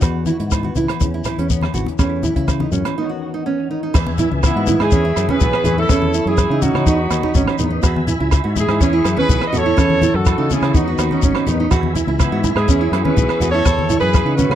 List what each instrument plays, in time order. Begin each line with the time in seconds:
0.01 clean electric guitar E2 B3, fingered electric bass E2, nylon-string guitar F#4, kick, cross-stick, closed hi-hat, low agogo, shekere
0.26 nylon-string guitar E4, clean electric guitar F#4, closed hi-hat, high conga, shekere
0.40 fingered electric bass G#2, nylon-string guitar E4, closed hi-hat
0.51 clean electric guitar B3, kick, cross-stick, closed hi-hat, low agogo, shekere
0.63 nylon-string guitar F#4, high conga
0.75 fingered electric bass C#2, clean electric guitar E3, nylon-string guitar E4, closed hi-hat, low conga, shekere
0.88 cross-stick, closed hi-hat, low agogo
1.00 fingered electric bass E2, clean electric guitar E2 C#4, muted nylon-string guitar stroke, kick, closed hi-hat, high conga, shekere
1.14 nylon-string guitar E4
1.24 clean electric guitar E4, cross-stick, closed hi-hat, low conga, low agogo, shekere
1.38 fingered electric bass E2, nylon-string guitar C#4, closed hi-hat
1.50 nylon-string guitar B3, clean electric guitar C#4, kick, closed hi-hat, shekere
1.61 cross-stick, high conga, low agogo
1.74 fingered electric bass G#1, clean electric guitar E3, nylon-string guitar F#4, closed hi-hat, low conga, shekere
1.86 closed hi-hat, high conga
1.99 fingered electric bass E2, clean electric guitar E2 E3 A3 C#4, nylon-string guitar C#4, kick, cross-stick, closed hi-hat, low agogo, shekere
2.03 clean electric guitar E4
2.23 nylon-string guitar E4, clean electric guitar E4, closed hi-hat, high conga, low conga, shekere
2.36 fingered electric bass C#3, nylon-string guitar E4, kick, closed hi-hat
2.48 muted clean electric guitar stroke, kick, cross-stick, closed hi-hat, low agogo, shekere
2.60 nylon-string guitar D#4, high conga
2.72 fingered electric bass F#2, clean electric guitar E3, nylon-string guitar C#4, closed hi-hat, low conga, shekere
2.85 cross-stick, closed hi-hat, low agogo
2.98 clean electric guitar E2 D#3 B3 C#4 F#4, nylon-string guitar D#4
3.09 nylon-string guitar F#4
3.21 clean electric guitar F#4
3.34 nylon-string guitar D#4
3.46 clean electric guitar B3, nylon-string guitar C#4
3.58 clean electric guitar C#4
3.69 clean electric guitar D#3, nylon-string guitar D#4
3.83 nylon-string guitar D#4
3.94 clean electric guitar E2, fingered electric bass E2, tonewheel organ B4 E5 G#5, muted nylon-string guitar stroke, kick, cross-stick, crash, low agogo, shekere
4.07 high conga
4.18 nylon-string guitar E4, closed hi-hat, low conga, shekere
4.31 fingered electric bass C#2, muted nylon-string guitar stroke
4.43 horn section B3 E4, trumpet B3, kick, cross-stick, low agogo, shekere
4.56 fingered electric bass G#2, nylon-string guitar F#4
4.67 clean electric guitar E3 G#3, nylon-string guitar E4, closed hi-hat, high conga, low conga, shekere
4.80 fingered electric bass G#2, horn section E4 G#4, trumpet E4, cross-stick, low agogo
4.91 fingered electric bass E2, clean electric guitar E2, nylon-string guitar C#4, tonewheel organ C#5 E5 B5, kick, shekere
5.05 nylon-string guitar E4
5.16 fingered electric bass F#2, cross-stick, closed hi-hat, low agogo, shekere
5.28 nylon-string guitar C#4, horn section G#4 B4, trumpet G#4, high conga
5.40 fingered electric bass B1, nylon-string guitar B3, kick, low conga, shekere
5.53 cross-stick, low agogo
5.64 fingered electric bass E2, clean electric guitar E3 B3, nylon-string guitar G#4, closed hi-hat, low conga, shekere
5.78 nylon-string guitar E4, horn section E4 A4, trumpet E4
5.89 fingered electric bass E2, clean electric guitar E2, nylon-string guitar C#4, kick, cross-stick, low agogo, shekere
6.02 high conga
6.14 nylon-string guitar E4, closed hi-hat, shekere
6.26 fingered electric bass F#2, trumpet E4, nylon-string guitar E4, horn section E4 G#4
6.38 kick, cross-stick, low agogo, shekere
6.50 fingered electric bass C#3, nylon-string guitar D#4
6.62 clean electric guitar E3 A3, nylon-string guitar C#4, horn section D#4 F#4, trumpet D#4, closed hi-hat, high conga, low conga, shekere
6.75 fingered electric bass C#3, cross-stick, low agogo
6.86 clean electric guitar E2, fingered electric bass E2, nylon-string guitar D#4, tonewheel organ D#5 B5, kick, shekere
7.11 fingered electric bass D#2, cross-stick, closed hi-hat, low agogo, shekere
7.23 nylon-string guitar D#4, high conga
7.35 fingered electric bass G#1, nylon-string guitar C#4, kick, low conga, shekere
7.47 cross-stick, low agogo
7.59 fingered electric bass E2, clean electric guitar D#3 B3, nylon-string guitar D#4, closed hi-hat, low conga, shekere
7.70 nylon-string guitar D#4
7.83 fingered electric bass E2, nylon-string guitar F#4, tonewheel organ E5 G#5, muted clean electric guitar stroke, kick, cross-stick, low agogo, shekere
7.96 high conga
8.07 nylon-string guitar E4, closed hi-hat, low conga, shekere
8.20 fingered electric bass C#2, nylon-string guitar E4
8.31 kick, cross-stick, low agogo, shekere
8.44 fingered electric bass G#2, nylon-string guitar F#4
8.56 clean electric guitar E3 G#3, nylon-string guitar E4, horn section E4 G#4, trumpet E4, closed hi-hat, high conga, low conga, shekere
8.68 fingered electric bass G#2, cross-stick, low agogo
8.80 clean electric guitar E2, fingered electric bass E2, nylon-string guitar C#4, horn section E4 G#4, tonewheel organ C#6, kick, shekere
8.84 trumpet E4
8.93 nylon-string guitar E4
9.04 fingered electric bass F#2, cross-stick, closed hi-hat, low agogo, shekere
9.17 nylon-string guitar C#4, horn section G#4 B4, high conga
9.21 trumpet G#4
9.29 fingered electric bass B1, nylon-string guitar B3, kick, low conga, shekere
9.41 cross-stick, low agogo
9.47 trumpet B4, horn section D#5
9.53 fingered electric bass E2, clean electric guitar E3 B3, nylon-string guitar F#4, trumpet A4, horn section A4 C#5, closed hi-hat, low conga, shekere
9.66 nylon-string guitar E4
9.77 clean electric guitar E2, fingered electric bass E2, nylon-string guitar C#4, tonewheel organ A5, kick, cross-stick, low agogo, shekere
9.90 high conga
10.02 nylon-string guitar E4, closed hi-hat, high conga, low conga, shekere
10.14 fingered electric bass F#2, horn section F#4 A4, trumpet F#4
10.26 kick, cross-stick, low agogo, shekere
10.38 fingered electric bass C#3, nylon-string guitar D#4
10.50 clean electric guitar E3 A3, nylon-string guitar C#4, trumpet E4, horn section E4 G#4, closed hi-hat, high conga, low conga, shekere
10.62 fingered electric bass C#3, cross-stick, low agogo
10.73 fingered electric bass E2, clean electric guitar E2 D#3 B3, nylon-string guitar D#4, horn section D#4 F#4, trumpet D#4, tonewheel organ D#5 B5, kick, high conga, shekere
10.77 clean electric guitar C#4
10.88 nylon-string guitar F#4
10.98 fingered electric bass D#2, cross-stick, closed hi-hat, low agogo, shekere
11.11 nylon-string guitar C#4, high conga
11.22 fingered electric bass G#1, nylon-string guitar C#4, kick, low conga, shekere
11.35 cross-stick, low agogo
11.46 fingered electric bass E2, clean electric guitar D#3 B3, nylon-string guitar D#4, closed hi-hat, low conga, shekere
11.60 nylon-string guitar D#4
11.71 fingered electric bass E2, clean electric guitar E2, nylon-string guitar F#4, tonewheel organ E5 G#5, kick, cross-stick, low agogo, shekere
11.83 high conga
11.95 nylon-string guitar E4, closed hi-hat, low conga, shekere
12.07 fingered electric bass C#2, nylon-string guitar E4
12.19 trumpet B3, horn section B3 E4, kick, cross-stick, low agogo, shekere
12.32 fingered electric bass G#2, nylon-string guitar F#4
12.44 clean electric guitar E3 G#3, nylon-string guitar E4, closed hi-hat, high conga, low conga, shekere
12.55 fingered electric bass G#2, trumpet E4, horn section E4 G#4, cross-stick, low agogo
12.68 clean electric guitar E2 E3 B3 C#4 E4, fingered electric bass E2, nylon-string guitar C#4, tonewheel organ B5 C#6, kick, shekere
12.81 nylon-string guitar E4
12.92 fingered electric bass F#2, cross-stick, closed hi-hat, low agogo
13.03 nylon-string guitar C#4, trumpet G#4, horn section G#4 B4, high conga
13.17 fingered electric bass B1, nylon-string guitar B3, kick, low conga, shekere
13.29 cross-stick, low agogo
13.40 fingered electric bass E2, clean electric guitar E3, nylon-string guitar F#4, closed hi-hat, low conga, shekere
13.44 clean electric guitar B3
13.51 nylon-string guitar E4, trumpet A4, horn section A4 C#5
13.65 clean electric guitar E2, fingered electric bass E2, tonewheel organ E5, muted nylon-string guitar stroke, kick, cross-stick, low agogo, shekere
13.79 high conga
13.90 nylon-string guitar E4, closed hi-hat, low conga, shekere
14.00 fingered electric bass F#2, nylon-string guitar E4, trumpet G#4, horn section G#4 B4
14.14 kick, cross-stick, low agogo, shekere
14.25 fingered electric bass C#3, nylon-string guitar D#4
14.35 clean electric guitar E3 A3, nylon-string guitar C#4, trumpet F#4, horn section F#4 B4, closed hi-hat, high conga, low conga, shekere
14.50 fingered electric bass C#3, cross-stick, low agogo